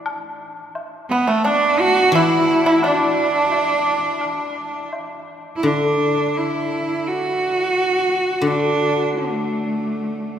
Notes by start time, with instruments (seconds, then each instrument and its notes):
0.06 high woodblock
0.75 low woodblock
1.10 cello B3, pipa B3
1.27 cello A3, pipa A3
1.44 pipa D4, cello D4, high woodblock
1.79 cello F#4
2.12 guzheng E3, pipa E4, cello E4
2.66 pipa E4
2.83 cello D4, pipa D4, high woodblock
3.52 low woodblock
4.21 high woodblock
4.93 low woodblock
5.56 cello E4
5.63 guzheng D3, cello D4
6.37 cello E4
7.08 cello F#4
8.41 guzheng D3
8.46 cello D4
9.16 cello A3